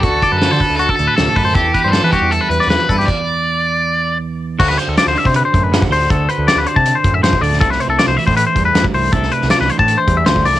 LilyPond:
<<
  \new Staff \with { instrumentName = "Clean electric guitar" } { \time 4/4 \key d \mixolydian \tempo 4 = 159 fis'8 d''16 b'8 c''16 b'8 fis'16 a'8 b'16 a'8 b'16 c''16 | a'8 b'16 c''8 b'16 fis'8 a'16 b'8 d''16 b'8 a'16 g'16 | r1 | fis'16 b'16 c''16 a'16 d''16 c''16 e''16 c''16 b'16 c''8 b'8 r16 c''8 |
a'8 b'8 d''16 b'16 c''16 a''8 c''8 e''16 c''8 d''8 | a'16 b'16 c''16 a'16 d''16 c''16 e''16 c''16 b'16 c''8 b'8 r16 c''8 | a'8 b'8 d''16 b'16 c''16 a''8 c''8 e''16 c''8 d''8 | }
  \new Staff \with { instrumentName = "Overdriven electric guitar" } { \time 4/4 \key d \mixolydian a'4 a'4 a'8 a'8 a'4 | g'8.~ g'32 b'32 a'8 g'8 a'8 b'4. | d''2. r4 | r1 |
r1 | r1 | r1 | }
  \new Staff \with { instrumentName = "Clean electric guitar" } { \time 4/4 \key d \mixolydian << { <e' fis'>8 fis'8 fis'4 fis'2 | e'8 e'8 d'4 e'4 d'8 e'8 | r1 | <fis' c''>8 c''2~ c''8 fis'8 c''8 |
<fis' c''>8 c''2.~ c''8 | <a d' e'>8 b16 d'2~ d'16 a8 e'8 | <a d' e'>8 d'2~ d'8 a8 e'8 | } \\ { d4. d'4 a,8 c8 d8 | e,4. g4 e,4.~ | e,1 | d4. d'4 a,4. |
d4. d'4 a,8 e8 d8 | c4. e4 g,4. | c4. e4 g,4. | } >> }
  \new Staff \with { instrumentName = "Picked electric bass" } { \clef bass \time 4/4 \key d \mixolydian d,8 r16 fis,8 d16 r16 d,8 r16 d,16 r16 d,16 r16 fis,8 | e,8 r16 g,8 e16 r16 e,8 r16 e,16 r16 e,16 r16 g,8 | r1 | d,8 r16 d,16 r16 d,16 r16 c8 r16 fis,8 fis,16 r16 d,8 |
d,8 r16 d,16 r16 d,16 r16 c8 r16 fis,8 fis,16 r16 d,8 | c,8 r16 c,16 r16 c,16 r16 a,8 r16 e,8 e,16 r16 c,8 | c,8 r16 c,16 r16 c,16 r16 a,8 r16 e,8 d,8 c,8 | }
  \new DrumStaff \with { instrumentName = "Drums" } \drummode { \time 4/4 <hh bd>8 <hh bd>8 <hh sn>16 sn16 <hho bd>8 hh16 bd16 hh8 <hh sn>8 <hho bd>8 | <hh bd>8 <hh bd>8 <hh sn>8 <hh bd>8 hh8 hh16 sn16 <hh sn>8 <hh bd>16 sn16 | <cymc bd>4 r4 r4 r4 | <cymc bd>16 sn16 hh8 <hh sn>16 sn16 hho16 bd16 hh8 <hh bd>8 <hh sn>16 bd16 hho8 |
<hh bd>8 hh8 <hh sn>8 hh16 bd16 hh8 <hh bd>8 <hh sn>16 bd16 hho16 sn16 | <hh bd>16 sn16 hh8 <hh sn>8 hho16 bd16 hh8 <hh bd>8 <hh sn>16 bd16 hho8 | <hh bd>16 sn16 hh16 sn16 <hh sn>16 sn16 hh16 bd16 hh8 <hh bd>8 <hh sn>16 bd16 hho16 sn16 | }
>>